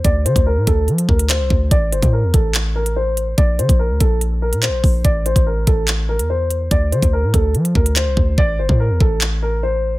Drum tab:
HH |x-xx--x-xx-xx---|x-xx--x-x--x--x-|x-xx--x-x--xx-o-|x-xx--x-x--x--x-|
CP |------------x---|--------x-------|------------x---|--------x-------|
BD |o--o--o---o---o-|o--o--o---------|o--o--o-------o-|o--o--o---------|

HH |x-xx--x-xx-xx---|----------------|
CP |------------x---|--------x-------|
BD |o--o--o---o---o-|o--o--o---------|